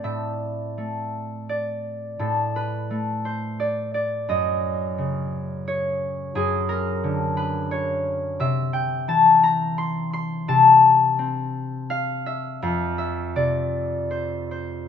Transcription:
Already playing: A3 C4 A4 B4 D5
0.04 A2 E5
0.78 A3
1.49 D5
2.19 A2 A4
2.56 B4
2.90 A3
3.25 C5
3.60 D5
3.94 D5
4.29 F#2 D#5
4.98 C#3
5.68 C#5
6.35 F#2 G#4
6.69 A#4
7.04 D3
7.37 B4
7.71 C#5
8.40 C3 E5
8.73 G5
9.08 E3 A5
9.43 A#5
9.78 C6
10.13 C6
10.48 C3 A5
11.19 C4
11.90 F5
12.26 E5
12.62 F2 F5
12.98 E5
13.36 C3 D5
14.11 C5
14.51 C5

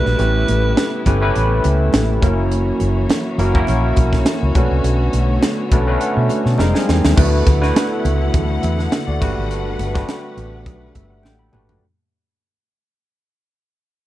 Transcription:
Already playing: D3 E3 G3 A3 D4 E4 F#4 G4 A4 B4
0.06 A#1, snare
0.18 A1 C#3 A3 B3 C#4 E4 G4 B4, closed hi-hat, muted conga
0.48 A1, closed hi-hat, muted conga
0.77 snare, closed hi-hat, high conga
1.06 G1 A3 C#4 E4 G4 B4, kick, closed hi-hat, muted conga
1.21 A3 C#4 E4 G4 B4
1.36 A1, closed hi-hat
1.64 C#2, closed hi-hat, muted conga
1.93 A1, snare, closed hi-hat, high conga
2.22 F#1 E3 F#3 A#3 C#4 E4 F#4 A#4 C#5, kick, closed hi-hat, high conga
2.52 closed hi-hat
2.80 F#1, closed hi-hat, muted conga
3.10 snare, closed hi-hat, high conga
3.38 F#1 A#3 C#4 E4 F#4 A#4, closed hi-hat, muted conga
3.54 A#3 C#4 E4 F#4 A#4, kick
3.67 A#1, closed hi-hat, low conga
3.97 B1, kick, closed hi-hat, muted conga
4.13 kick, snare
4.25 snare, closed hi-hat, high conga
4.43 C#2
4.55 B1 D3 A3 B3 C#4 D4 F#4 B4, kick, closed hi-hat, high conga
4.71 C2
4.84 B1, closed hi-hat, muted conga
5.13 B1, closed hi-hat, muted conga
5.42 snare, closed hi-hat, high conga
5.71 B1 A3 C#4 D4 F#4 B4 D5, kick, closed hi-hat, muted conga
5.87 A3 C#4 D4 F#4 B4 E5
6.01 F#5, closed hi-hat
6.17 B2
6.29 closed hi-hat, muted conga
6.46 B2, snare
6.58 F1 F3 G3 G#3 A#3 C4 D#4 F4 A#4 G5, snare, high conga
6.74 G#5, snare
6.89 E2, snare, high conga
7.04 D#2, snare
7.16 D2 A3 B3 D4 E4 F#4 B4 F#5, kick, crash
7.20 D3 E4
7.46 D2, kick, closed hi-hat, muted conga
7.61 A3 D4 E4 F#4 B4, snare
7.76 snare, closed hi-hat, high conga
8.05 C#2, closed hi-hat, muted conga
8.34 D2, kick, closed hi-hat, low conga
8.63 E2 E5, closed hi-hat, muted conga
8.78 A4 F#5, snare
8.92 snare, closed hi-hat, high conga
9.07 D2 F#4 D5
9.21 G1 G3 A3 B3 D4 F#4 G4 B4, kick, crash, high conga
9.37 G#1
9.51 G1, closed hi-hat
9.79 G1, closed hi-hat, muted conga
9.94 A3 D4 F#4 G4 B4, kick, snare
10.09 snare, closed hi-hat, high conga
10.37 A1, closed hi-hat, muted conga
10.66 B1, kick, closed hi-hat
10.95 G1 E5, kick, closed hi-hat, muted conga
11.10 F#5
11.23 A1 G5, snare, high conga
11.39 B5
11.52 G#1 A3 D4 F#4 G4 B4, mid tom, high conga
11.69 floor tom

